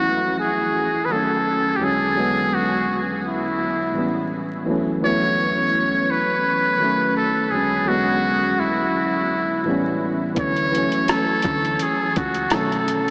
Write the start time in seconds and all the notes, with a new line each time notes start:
Already playing: D2 E3 F3 F#3 A3 C#4 E4 F#4
0.40 G#4
1.05 D#3 B4
1.10 F#3 A3 A4
1.14 C#4
1.76 E2 D3 G4
1.81 F#3 G#3 C#4 G#4
2.13 E2 D3 F#3
2.18 G#3 B3
2.54 F#4
3.27 E4
3.93 A2 E3 G3
3.98 B3 C#4
4.65 D2 E3 F#3
4.70 A3 C#4
5.01 D2 E3 F#3 C#5
5.06 A3 B3
6.10 B4
6.78 D#3 F#3
6.83 A3 C#4
7.17 A4
7.50 E2 D3 F#3 G#4
7.55 G#3 C#4
7.84 E2 D3 F#3
7.88 G#3 B3 F#4
8.60 E4
9.64 A2 E3 G3
9.69 B3 C#4
10.34 D2 E3 F#3, kick, closed hi-hat
10.39 A3 C#4 C#5
10.56 closed hi-hat
10.72 E3 F#3, closed hi-hat
10.76 A3 C#4
10.92 closed hi-hat
11.08 A4, cross-stick, closed hi-hat
11.42 D2, kick, closed hi-hat
11.65 closed hi-hat
11.79 G#4, closed hi-hat
12.16 C#2 F#4, kick, closed hi-hat
12.35 closed hi-hat
12.48 D3 F#3, cross-stick, closed hi-hat
12.52 B1 D#3 A3 C#4 A4
12.72 closed hi-hat
12.88 closed hi-hat